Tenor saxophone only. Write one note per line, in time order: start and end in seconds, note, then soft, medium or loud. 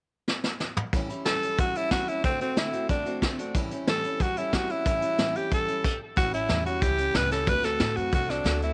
1.25 1.56 A4 medium
1.60 1.78 F#4 loud
1.76 1.91 E4 medium
1.91 2.10 F#4 loud
2.08 2.24 E4 medium
2.25 2.40 C4 medium
2.41 2.60 C4 medium
2.58 2.89 E4 medium
2.90 3.20 D4 medium
3.89 4.23 A4 loud
4.22 4.39 F#4 loud
4.37 4.55 E4 medium
4.54 4.72 F#4 medium
4.71 5.38 E4 loud
5.36 5.52 G4 medium
5.54 5.98 A4 medium
6.17 6.32 F#4 loud
6.34 6.64 E4 medium
6.66 6.83 F#4 medium
6.82 7.17 G4 loud
7.16 7.31 B4 loud
7.32 7.50 A4 loud
7.49 7.66 B4 loud
7.64 7.98 A4 loud
7.96 8.12 F#4 medium
8.14 8.32 F#4 loud
8.30 8.62 D4 medium
8.64 8.73 E4 medium